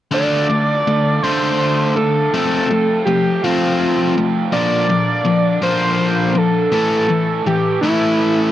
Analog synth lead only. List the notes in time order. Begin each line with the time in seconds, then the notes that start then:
0.14 D5
1.23 C5
1.96 A4
2.32 A4
3.05 G4
3.44 F4
4.53 D5
5.63 C5
6.38 A4
6.74 A4
7.47 G4
7.81 E4